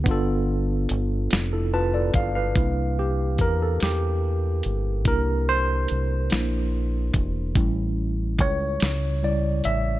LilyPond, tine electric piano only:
\new Staff \with { instrumentName = "Tine electric piano" } { \time 6/8 \key g \mixolydian \tempo 4. = 48 << { r4. r16 <e' a'>16 <f' b' a''>16 <a' d''>16 f''16 <b' f''>16~ | \key c \mixolydian <b' f''>16 r16 g'8 bes'16 a'16 g'4. | bes'8 c''4 r4. | r4 cis''4 d''8 e''8 | } \\ { <b d' f' a'>2. | <bes d' e'>2. | <bes d' e'>4. <bes d' e'>8 r4 | <g cis' e'>4. r8 <cis g e'>8 r8 | } >> }